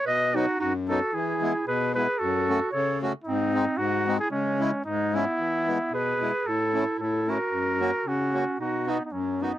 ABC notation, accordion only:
X:1
M:2/4
L:1/8
Q:"Swing" 1/4=113
K:C#m
V:1 name="Accordion"
z [F,B,D] z [F,B,D] | z [G,B,E] z [G,B,E] | z [A,CF] z [A,CF] | z [G,^B,D] z [G,B,D] |
z [G,CE] z [G,CE] | [K:E] z [G,B,E] z [G,B,E] | z [A,CE] z [A,CE] | z [^A,CF] z [A,CF] |
z [B,DF] z [B,DF] |]
V:2 name="Accordion" clef=bass
B,,2 F,,2 | E,2 B,,2 | F,,2 C,2 | G,,2 G,,2 |
C,2 G,,2 | [K:E] E,2 B,,2 | A,,2 A,,2 | F,,2 C,2 |
B,,2 F,,2 |]